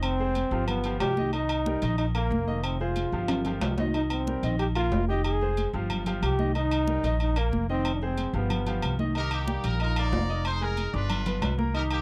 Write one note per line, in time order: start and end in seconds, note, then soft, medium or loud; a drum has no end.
0.00 0.46 F1 medium
0.00 0.14 D#3 medium
0.00 0.64 C4 loud
0.00 0.14 D#4 medium
0.00 0.14 D#5 medium
0.00 high conga soft
0.00 low agogo loud
0.20 0.46 G#3 medium
0.20 0.47 G#4 medium
0.20 0.47 C5 medium
0.20 high conga soft
0.35 high conga medium
0.35 low agogo medium
0.51 0.97 G1 loud
0.51 0.79 F3 medium
0.51 0.79 F4 medium
0.51 0.79 G4 medium
0.51 high conga soft
0.67 0.98 B3 medium
0.67 high conga soft
0.67 low conga medium
0.67 low agogo loud
0.84 1.12 F3 medium
0.84 1.12 F4 medium
0.84 1.12 G4 medium
0.84 high conga soft
0.84 low agogo medium
1.00 1.77 C2 medium
1.00 1.31 G4 loud
1.00 high conga soft
1.00 low timbale medium
1.00 low agogo loud
1.17 1.31 D#3 medium
1.17 1.31 D#4 medium
1.17 1.31 D#5 medium
1.17 high conga medium
1.33 1.60 D#3 medium
1.33 1.95 D#4 medium
1.33 1.61 D#4 medium
1.33 1.61 D#5 medium
1.33 high conga soft
1.33 low agogo medium
1.49 high conga soft
1.49 low agogo loud
1.66 1.80 G3 medium
1.66 1.80 G4 medium
1.66 1.80 A#4 medium
1.66 high conga loud
1.82 2.28 A#1 loud
1.82 2.10 D#3 medium
1.82 2.10 D#4 medium
1.82 2.10 D#5 medium
1.82 high conga soft
1.82 low agogo medium
1.98 2.06 D#4 medium
1.98 high conga soft
1.98 low agogo medium
2.15 2.66 A#3 medium
2.15 2.42 A#3 medium
2.15 2.42 A#4 medium
2.15 high conga soft
2.15 low agogo loud
2.31 3.07 F1 medium
2.31 high conga medium
2.47 2.74 D#3 medium
2.47 2.74 D#4 medium
2.47 2.74 D#5 medium
2.47 high conga soft
2.64 2.80 C4 medium
2.64 high conga soft
2.64 low agogo loud
2.80 3.07 G#3 medium
2.80 3.47 F4 medium
2.80 3.07 G#4 medium
2.80 3.07 C5 medium
2.80 high conga soft
2.96 high conga medium
2.96 low agogo medium
3.12 3.58 G1 medium
3.12 3.40 F3 medium
3.12 3.40 F4 medium
3.12 3.40 G4 medium
3.12 high conga soft
3.28 high conga soft
3.28 low conga medium
3.28 high timbale loud
3.28 low agogo loud
3.45 3.73 F3 medium
3.45 3.73 F4 medium
3.45 3.73 G4 medium
3.45 high conga soft
3.45 low conga medium
3.45 high timbale medium
3.45 low agogo medium
3.61 4.37 C2 medium
3.61 high conga soft
3.61 low timbale loud
3.61 low agogo loud
3.78 3.92 D#3 medium
3.78 3.92 D#4 medium
3.78 3.92 D#5 medium
3.78 high conga medium
3.78 low timbale medium
3.94 4.21 D#3 medium
3.94 4.21 D#4 medium
3.94 4.03 D#4 medium
3.94 4.22 D#5 medium
3.94 low agogo medium
4.10 4.56 C4 medium
4.10 high conga soft
4.10 low agogo loud
4.27 4.41 G3 medium
4.27 4.41 G4 medium
4.27 4.41 A#4 medium
4.27 high conga medium
4.43 4.88 A#1 loud
4.43 4.70 D#3 medium
4.43 4.70 D#4 medium
4.43 4.70 D#5 medium
4.43 high conga soft
4.43 low agogo medium
4.59 4.66 G4 loud
4.59 high conga soft
4.59 low agogo medium
4.75 5.03 A#3 medium
4.75 5.06 F4 loud
4.75 5.03 A#4 medium
4.75 high conga soft
4.75 low agogo loud
4.92 5.68 F1 medium
4.92 high conga medium
4.92 low timbale medium
5.08 5.36 D#3 medium
5.08 5.36 D#4 medium
5.08 5.24 G4 loud
5.08 5.36 D#5 medium
5.08 high conga soft
5.24 5.71 G#4 loud
5.24 high conga soft
5.24 low agogo loud
5.41 5.68 G#3 medium
5.41 5.68 G#4 medium
5.41 5.69 C5 medium
5.41 high conga soft
5.57 high conga medium
5.57 low agogo medium
5.73 6.19 G1 loud
5.73 6.01 F3 medium
5.73 6.01 F4 medium
5.73 6.01 G4 medium
5.73 high conga soft
5.90 high conga soft
5.90 low conga medium
5.90 low agogo loud
6.06 6.33 F3 medium
6.06 6.33 F4 medium
6.06 6.33 G4 medium
6.06 high conga soft
6.06 low conga medium
6.06 low agogo medium
6.22 6.98 C2 loud
6.22 6.53 G4 loud
6.22 high conga soft
6.22 low agogo loud
6.39 6.52 D#3 medium
6.39 6.52 D#4 medium
6.39 6.53 D#5 medium
6.39 high conga medium
6.55 6.82 D#3 medium
6.55 7.16 D#4 loud
6.55 6.82 D#4 medium
6.55 6.82 D#5 medium
6.55 high conga soft
6.55 low agogo medium
6.71 high conga soft
6.71 low agogo loud
6.87 7.01 G3 medium
6.87 7.02 G4 medium
6.87 7.02 A#4 medium
6.87 high conga medium
7.03 7.49 A#1 loud
7.03 7.31 D#3 medium
7.03 7.31 D#4 medium
7.03 7.31 D#5 medium
7.03 high conga soft
7.03 low agogo medium
7.20 7.40 D#4 medium
7.20 high conga soft
7.20 low agogo medium
7.36 7.63 A#3 medium
7.36 7.70 A#3 medium
7.36 7.63 A#4 medium
7.36 high conga soft
7.36 low agogo loud
7.52 8.28 F1 loud
7.52 high conga medium
7.69 7.96 D#3 medium
7.69 7.93 C4 loud
7.69 7.96 D#4 medium
7.69 7.96 D#5 medium
7.69 high conga soft
7.85 high conga soft
7.85 low agogo loud
7.95 8.04 D4 medium
8.02 8.29 G#3 medium
8.02 8.34 C4 loud
8.02 8.29 G#4 medium
8.02 8.29 C5 medium
8.02 high conga soft
8.18 high conga medium
8.18 low agogo medium
8.33 8.79 G1 loud
8.33 8.61 F3 medium
8.33 8.96 B3 medium
8.33 8.61 F4 medium
8.33 8.61 G4 medium
8.33 high conga soft
8.50 high conga soft
8.50 low conga medium
8.50 low agogo loud
8.66 8.93 F3 medium
8.66 8.93 F4 medium
8.66 8.94 G4 medium
8.66 high conga soft
8.66 low conga medium
8.66 low agogo medium
8.82 9.58 C2 medium
8.82 high conga soft
8.82 low agogo loud
8.99 9.12 D#3 medium
8.99 9.13 D#4 medium
8.99 9.13 D#5 medium
8.99 high conga medium
9.15 9.42 D#3 medium
9.15 9.42 D#4 medium
9.15 9.32 D#4 medium
9.15 9.31 G4 medium
9.15 9.31 A#4 loud
9.15 9.43 D#5 medium
9.15 high conga soft
9.15 low agogo medium
9.31 9.78 A#3 medium
9.31 9.77 D#4 medium
9.31 9.62 G4 medium
9.31 high conga soft
9.31 low agogo loud
9.48 9.74 G3 medium
9.48 9.74 G4 medium
9.48 9.75 G5 medium
9.48 high conga loud
9.64 10.09 A#1 loud
9.64 9.80 A#4 loud
9.64 high conga soft
9.64 low agogo medium
9.80 9.94 D#4 medium
9.80 10.42 D#4 medium
9.80 9.97 F4 medium
9.80 9.96 A#4 loud
9.80 9.94 D#5 medium
9.80 9.94 D#6 medium
9.80 high conga soft
9.80 low agogo medium
9.96 10.23 D#4 medium
9.96 10.42 F4 medium
9.96 10.42 A#4 medium
9.96 10.42 D5 loud
9.96 10.23 F5 medium
9.96 high conga soft
9.96 low agogo loud
10.12 10.88 F1 medium
10.12 high conga medium
10.12 low timbale medium
10.29 10.56 D#4 medium
10.29 10.56 D#5 medium
10.29 10.56 D#6 medium
10.29 high conga soft
10.45 10.61 D#4 medium
10.45 11.06 G#4 medium
10.45 10.62 C5 loud
10.45 high conga soft
10.45 low agogo loud
10.61 10.88 G#3 medium
10.61 11.07 D#4 medium
10.61 10.88 G#4 medium
10.61 10.94 A#4 loud
10.61 10.88 G#5 medium
10.61 high conga soft
10.77 high conga medium
10.77 low agogo medium
10.93 11.39 G1 loud
10.93 11.20 D4 medium
10.93 11.55 D4 medium
10.93 11.55 F4 medium
10.93 11.55 B4 loud
10.93 11.20 D5 medium
10.93 11.20 D6 medium
10.93 high conga soft
11.10 high conga soft
11.10 low conga medium
11.10 low agogo loud
11.26 11.53 B3 medium
11.26 11.53 B4 medium
11.26 11.53 B5 medium
11.26 high conga soft
11.26 low conga medium
11.26 low agogo medium
11.42 12.02 C2 medium
11.42 high conga soft
11.42 low timbale medium
11.42 low agogo loud
11.58 11.71 A#3 medium
11.58 11.72 A#4 medium
11.58 11.72 A#5 medium
11.58 high conga medium
11.74 12.01 D#3 medium
11.74 12.01 D#4 loud
11.74 11.90 D#4 medium
11.74 11.90 G4 medium
11.74 11.82 A#4 loud
11.74 12.01 D#5 medium
11.74 high conga soft
11.74 low agogo medium
11.91 12.02 A#3 medium
11.91 12.02 D#4 medium
11.91 12.02 G4 loud
11.91 high conga soft
11.91 low agogo loud